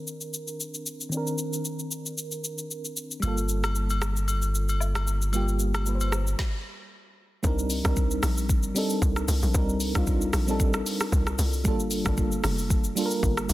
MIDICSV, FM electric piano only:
0, 0, Header, 1, 2, 480
1, 0, Start_track
1, 0, Tempo, 526316
1, 1026, Time_signature, 4, 2, 24, 8
1, 12340, End_track
2, 0, Start_track
2, 0, Title_t, "FM electric piano"
2, 0, Program_c, 0, 5
2, 0, Control_c, 0, 64, 127
2, 0, Note_on_c, 0, 51, 69
2, 0, Note_on_c, 0, 60, 67
2, 0, Note_on_c, 0, 62, 65
2, 0, Note_on_c, 0, 70, 80
2, 986, Note_off_c, 0, 51, 0
2, 986, Note_off_c, 0, 60, 0
2, 997, Note_on_c, 0, 51, 76
2, 998, Note_off_c, 0, 62, 0
2, 1010, Note_off_c, 0, 70, 0
2, 1021, Note_on_c, 0, 60, 70
2, 1044, Note_on_c, 0, 62, 66
2, 1067, Note_on_c, 0, 70, 83
2, 2895, Note_off_c, 0, 51, 0
2, 2907, Note_off_c, 0, 60, 0
2, 2917, Note_on_c, 0, 55, 72
2, 2918, Note_off_c, 0, 62, 0
2, 2930, Note_off_c, 0, 70, 0
2, 2940, Note_on_c, 0, 58, 68
2, 2959, Control_c, 0, 64, 0
2, 2963, Note_on_c, 0, 65, 65
2, 2987, Note_on_c, 0, 69, 79
2, 3113, Control_c, 0, 64, 127
2, 4815, Note_off_c, 0, 55, 0
2, 4827, Note_off_c, 0, 58, 0
2, 4838, Note_off_c, 0, 65, 0
2, 4850, Note_off_c, 0, 69, 0
2, 4855, Note_on_c, 0, 55, 73
2, 4867, Note_on_c, 0, 58, 67
2, 4878, Note_on_c, 0, 65, 71
2, 4890, Note_on_c, 0, 67, 80
2, 5324, Note_off_c, 0, 55, 0
2, 5335, Note_off_c, 0, 58, 0
2, 5335, Note_on_c, 0, 55, 54
2, 5346, Note_on_c, 0, 58, 51
2, 5347, Note_off_c, 0, 65, 0
2, 5358, Note_off_c, 0, 67, 0
2, 5358, Note_on_c, 0, 65, 51
2, 5370, Note_on_c, 0, 71, 49
2, 5421, Note_off_c, 0, 71, 0
2, 5427, Note_on_c, 0, 72, 62
2, 5820, Note_off_c, 0, 55, 0
2, 5826, Note_off_c, 0, 58, 0
2, 5832, Note_off_c, 0, 65, 0
2, 5836, Control_c, 0, 64, 0
2, 5867, Note_off_c, 0, 72, 0
2, 6774, Note_on_c, 0, 55, 88
2, 6783, Note_on_c, 0, 60, 83
2, 6792, Note_on_c, 0, 62, 84
2, 6800, Note_on_c, 0, 63, 84
2, 6809, Note_on_c, 0, 70, 97
2, 6940, Control_c, 0, 64, 127
2, 7073, Note_off_c, 0, 55, 0
2, 7077, Note_off_c, 0, 60, 0
2, 7082, Note_off_c, 0, 62, 0
2, 7086, Note_off_c, 0, 63, 0
2, 7090, Note_off_c, 0, 70, 0
2, 7147, Note_on_c, 0, 55, 86
2, 7156, Note_on_c, 0, 60, 77
2, 7164, Note_on_c, 0, 62, 77
2, 7173, Note_on_c, 0, 63, 74
2, 7182, Note_on_c, 0, 70, 94
2, 7819, Note_off_c, 0, 55, 0
2, 7824, Note_off_c, 0, 60, 0
2, 7828, Note_off_c, 0, 62, 0
2, 7833, Note_off_c, 0, 63, 0
2, 7837, Note_off_c, 0, 70, 0
2, 7975, Note_on_c, 0, 55, 87
2, 7983, Note_on_c, 0, 60, 80
2, 7992, Note_on_c, 0, 62, 80
2, 8001, Note_on_c, 0, 63, 85
2, 8009, Note_on_c, 0, 69, 96
2, 8566, Note_off_c, 0, 55, 0
2, 8570, Note_off_c, 0, 60, 0
2, 8575, Note_off_c, 0, 62, 0
2, 8579, Note_off_c, 0, 63, 0
2, 8583, Note_off_c, 0, 69, 0
2, 8695, Note_on_c, 0, 55, 89
2, 8704, Note_on_c, 0, 60, 80
2, 8713, Note_on_c, 0, 62, 85
2, 8721, Note_on_c, 0, 63, 83
2, 8730, Note_on_c, 0, 70, 95
2, 8993, Note_off_c, 0, 55, 0
2, 8998, Note_off_c, 0, 60, 0
2, 9002, Note_off_c, 0, 62, 0
2, 9006, Note_off_c, 0, 63, 0
2, 9011, Note_off_c, 0, 70, 0
2, 9067, Note_on_c, 0, 55, 88
2, 9075, Note_on_c, 0, 60, 77
2, 9084, Note_on_c, 0, 62, 78
2, 9093, Note_on_c, 0, 63, 78
2, 9101, Note_on_c, 0, 65, 95
2, 9447, Note_off_c, 0, 55, 0
2, 9451, Note_off_c, 0, 60, 0
2, 9455, Note_off_c, 0, 62, 0
2, 9460, Note_off_c, 0, 63, 0
2, 9464, Note_off_c, 0, 65, 0
2, 9547, Note_on_c, 0, 55, 91
2, 9555, Note_on_c, 0, 60, 83
2, 9564, Note_on_c, 0, 62, 84
2, 9573, Note_on_c, 0, 63, 83
2, 9581, Note_on_c, 0, 69, 104
2, 10315, Note_off_c, 0, 55, 0
2, 10319, Note_off_c, 0, 60, 0
2, 10324, Note_off_c, 0, 62, 0
2, 10328, Note_off_c, 0, 63, 0
2, 10333, Note_off_c, 0, 69, 0
2, 10614, Note_on_c, 0, 55, 92
2, 10623, Note_on_c, 0, 58, 80
2, 10632, Note_on_c, 0, 62, 84
2, 10637, Control_c, 0, 64, 0
2, 10641, Note_on_c, 0, 65, 83
2, 10650, Note_on_c, 0, 69, 98
2, 10771, Control_c, 0, 64, 127
2, 10913, Note_off_c, 0, 55, 0
2, 10917, Note_off_c, 0, 58, 0
2, 10922, Note_off_c, 0, 62, 0
2, 10926, Note_off_c, 0, 65, 0
2, 10930, Note_off_c, 0, 69, 0
2, 10986, Note_on_c, 0, 55, 85
2, 10995, Note_on_c, 0, 58, 81
2, 11003, Note_on_c, 0, 62, 78
2, 11012, Note_on_c, 0, 65, 79
2, 11021, Note_on_c, 0, 69, 92
2, 11659, Note_off_c, 0, 55, 0
2, 11663, Note_off_c, 0, 58, 0
2, 11668, Note_off_c, 0, 62, 0
2, 11672, Note_off_c, 0, 65, 0
2, 11676, Note_off_c, 0, 69, 0
2, 11814, Note_on_c, 0, 55, 89
2, 11823, Note_on_c, 0, 58, 82
2, 11831, Note_on_c, 0, 62, 84
2, 11840, Note_on_c, 0, 65, 83
2, 11849, Note_on_c, 0, 69, 78
2, 11901, Note_off_c, 0, 69, 0
2, 11907, Note_on_c, 0, 70, 100
2, 12340, Note_off_c, 0, 55, 0
2, 12340, Note_off_c, 0, 58, 0
2, 12340, Note_off_c, 0, 62, 0
2, 12340, Note_off_c, 0, 65, 0
2, 12340, Note_off_c, 0, 70, 0
2, 12340, End_track
0, 0, End_of_file